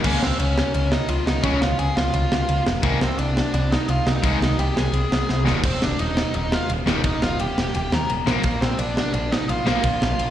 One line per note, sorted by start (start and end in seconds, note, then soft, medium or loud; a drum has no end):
0.04 0.15 C#2 loud
0.04 0.18 C#3 medium
0.04 0.18 G#3 medium
0.04 0.21 A#3 medium
0.04 0.19 C#4 loud
0.04 0.22 A#4 medium
0.04 kick loud
0.04 crash loud
0.21 0.32 C#2 medium
0.21 0.38 C4 medium
0.21 0.38 C5 medium
0.21 snare loud
0.40 0.61 C#2 medium
0.40 0.72 C#4 medium
0.40 0.72 C#5 medium
0.40 ride medium
0.58 snare loud
0.74 0.96 C#2 medium
0.74 0.91 C#4 medium
0.74 0.92 C#5 medium
0.74 ride medium
0.92 1.08 D#4 medium
0.92 1.09 D#5 medium
0.92 snare loud
1.09 1.20 C#2 medium
1.09 1.26 F4 medium
1.09 1.26 F5 medium
1.09 ride medium
1.26 1.37 C#2 medium
1.26 1.43 D#4 medium
1.26 1.44 D#5 loud
1.26 snare loud
1.43 1.54 C#2 loud
1.43 1.57 C#3 medium
1.43 1.58 G#3 medium
1.43 1.60 C#4 medium
1.43 1.58 C#4 loud
1.43 1.61 C#5 medium
1.43 kick loud
1.43 ride medium
1.61 1.72 C#2 medium
1.61 1.78 F4 medium
1.61 1.77 F5 loud
1.61 snare loud
1.79 1.90 C#2 medium
1.79 1.96 G#4 medium
1.79 1.95 G#5 loud
1.79 ride medium
1.96 2.07 C#2 medium
1.96 2.13 F4 medium
1.96 2.13 F5 medium
1.96 snare loud
2.14 2.24 C#2 medium
2.14 2.63 F4 medium
2.14 2.63 F5 medium
2.14 ride medium
2.31 2.42 C#2 medium
2.31 snare loud
2.49 2.59 C#2 medium
2.49 ride medium
2.66 2.77 F1 medium
2.66 snare loud
2.83 2.94 C2 loud
2.83 2.97 G#2 medium
2.83 2.97 D#3 medium
2.83 2.98 G#3 loud
2.83 3.00 A#3 medium
2.83 3.03 A#4 loud
2.83 kick loud
2.83 ride medium
3.01 3.12 C2 medium
3.01 3.18 C4 medium
3.01 3.19 C5 medium
3.01 snare loud
3.18 3.40 C2 medium
3.18 3.51 D4 medium
3.18 3.53 D5 medium
3.18 ride medium
3.37 snare loud
3.54 3.75 C2 loud
3.54 3.70 D4 medium
3.54 3.72 D5 medium
3.54 ride medium
3.72 3.88 D#4 medium
3.72 3.89 D#5 medium
3.72 snare loud
3.89 3.99 C2 medium
3.89 4.05 F4 medium
3.89 4.07 F5 medium
3.89 ride medium
4.06 4.17 C2 medium
4.06 4.14 D#4 medium
4.06 4.14 D#5 medium
4.06 snare loud
4.15 4.56 D#4 medium
4.15 4.60 D#5 medium
4.23 4.35 C2 medium
4.23 4.37 G#2 medium
4.23 4.38 D#3 loud
4.23 4.38 G#3 loud
4.23 kick loud
4.23 ride medium
4.41 4.52 C2 medium
4.41 snare loud
4.58 4.69 C2 medium
4.58 4.75 G4 medium
4.58 4.77 G5 medium
4.58 ride medium
4.76 4.87 C2 medium
4.76 5.42 G#4 medium
4.76 5.46 G#5 medium
4.76 snare loud
4.93 5.04 C2 medium
4.93 ride medium
5.12 5.22 C2 medium
5.12 snare loud
5.29 5.49 C2 medium
5.29 snare medium
5.45 5.57 D#1 medium
5.45 5.59 D#2 medium
5.45 5.60 A#2 medium
5.45 5.60 D#3 medium
5.45 snare medium
5.63 5.74 D#1 medium
5.63 5.81 C4 medium
5.63 5.84 C5 medium
5.63 kick loud
5.63 crash medium
5.82 5.93 D#1 medium
5.82 5.98 D4 medium
5.82 6.00 D5 medium
5.82 snare loud
5.99 6.21 D#1 medium
5.99 6.32 D#4 medium
5.99 6.34 D#5 medium
5.99 ride medium
6.17 snare loud
6.34 6.56 D#1 medium
6.34 6.51 D#4 medium
6.34 6.54 D#5 medium
6.34 ride medium
6.52 6.68 F4 medium
6.52 6.70 F5 medium
6.52 snare loud
6.70 6.80 D#1 medium
6.70 ride medium
6.86 6.97 D#1 medium
6.86 7.00 D#2 medium
6.86 7.01 A#2 medium
6.86 7.01 D#3 loud
6.86 snare loud
7.04 7.15 D#1 medium
7.04 7.21 D#4 medium
7.04 7.22 D#5 medium
7.04 kick loud
7.04 ride medium
7.22 7.32 D#1 medium
7.22 7.39 F4 medium
7.22 7.40 F5 medium
7.22 snare loud
7.39 7.50 D#1 medium
7.39 7.72 G4 medium
7.39 7.75 G5 medium
7.39 ride medium
7.58 7.68 D#1 medium
7.58 snare loud
7.74 7.86 D#1 loud
7.74 7.91 G4 medium
7.74 7.91 G5 medium
7.74 ride medium
7.92 8.03 D#2 medium
7.92 8.09 A#4 medium
7.92 8.09 A#5 medium
7.92 snare loud
8.10 8.20 D#1 medium
8.10 ride medium
8.26 8.37 A#1 medium
8.26 8.40 A#2 loud
8.26 8.41 F3 loud
8.26 8.41 A#3 loud
8.26 snare loud
8.43 8.55 A#1 loud
8.43 8.61 A#3 medium
8.43 8.61 A#4 medium
8.43 kick loud
8.43 ride medium
8.61 8.72 A#1 medium
8.61 8.78 C4 medium
8.61 8.79 C5 medium
8.61 snare loud
8.79 9.00 A#1 medium
8.79 9.12 D4 medium
8.79 9.12 D5 medium
8.79 ride medium
8.97 snare loud
9.14 9.35 A#1 medium
9.14 9.31 D4 medium
9.14 9.32 D5 loud
9.14 ride medium
9.32 9.49 D#4 medium
9.32 9.49 D#5 medium
9.32 snare loud
9.49 9.60 A#1 medium
9.49 9.65 F4 medium
9.49 9.65 F5 medium
9.49 ride medium
9.66 9.78 A#1 medium
9.66 9.81 A#2 medium
9.66 9.81 F3 loud
9.66 9.81 A#3 loud
9.66 10.30 F4 medium
9.66 10.30 F5 loud
9.66 snare loud
9.83 9.95 A#1 medium
9.83 kick loud
9.83 ride medium
10.02 10.13 A#1 medium
10.02 snare loud
10.19 10.30 A#1 loud
10.19 ride medium